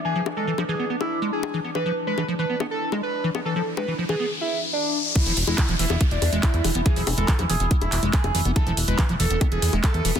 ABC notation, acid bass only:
X:1
M:4/4
L:1/16
Q:1/4=141
K:none
V:1 name="Acid bass" clef=bass
E, F, z ^G, E, F, E, B, B, z2 G, z2 E, B, | E, F, z ^G, E, F, E, B, B, z2 G, z2 E, B, | E, F, z ^G, E, F, E, B, z8 | E, F, z ^G, E, F, E, B, B, z2 G, z2 E, B, |
E, F, z ^G, E, F, E, B, B, z2 G, z2 E, B, | E, F, z ^G, E, F, E, B, B, z2 G, z2 E, B, |]